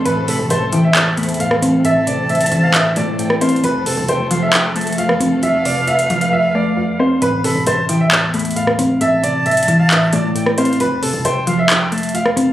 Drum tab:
HH |x-----------o-----------x-----------x-----------x-----------x--x--x--x--x-----------x-----------|x-----------x-----------x--x--x--x--x-----------x-----------x-----------x-----------x---x---x---|x-----------o-----------x-----------x-----------x-----------x--x--x--x--x-----------x-----------|x-----------o-----------x-----x-----x-----x-----------------------------------------------------|
CP |------------------------------------------------x-----------------------------------------------|------------------------------------------------x-----------------------------------------------|------------------------------------------------x-----------------------------------------------|------------------------------------------------------------------------------------------------|
SD |------------------------------------------------------------------------------r-----------------|------------------------------------------------------------------------------r-----------------|------------------------------------------------------------------------------r-----------------|------------------------------------------------------------------------------------------------|

HH |x-----------o-----------x-----------x-----------x-----------x--x--x--x--x-----------x-----------|x-----------x-----------x--x--x--x--x-----------x-----------x-----------x-----------x---x---x---|x-----------o-----------x-----------x-----------x-----------x--x--x--x--x-----------x-----------|
CP |------------------------------------------------x-----------------------------------------------|------------------------------------------------x-----------------------------------------------|------------------------------------------------x-----------------------------------------------|
SD |------------------------------------------------------------------------------r-----------------|------------------------------------------------------------------------------r-----------------|------------------------------------------------------------------------------r-----------------|